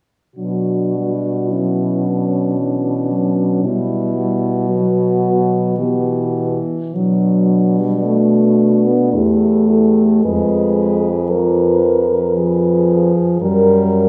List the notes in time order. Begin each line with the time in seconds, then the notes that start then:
0.36 B2 F#3 D4 F#4
0.94 G3
1.49 F#3 C#4 E4
2.05 D4
2.58 E3
3.11 F#3
3.64 B2 G3 B3 E4
4.15 G3
4.68 F#3 B3 F#4
5.78 E3 B3 G4
6.95 B2 F#3 D4
7.78 G3
8.04 A3 F#4
8.87 B3
9.13 E2 A3 E4 G4
9.69 G4 A4
10.22 F2 G#3 G#4 B4
11.30 F3 A#4 B4
12.35 F3 G#4 B4
13.41 F#2 G3 A#4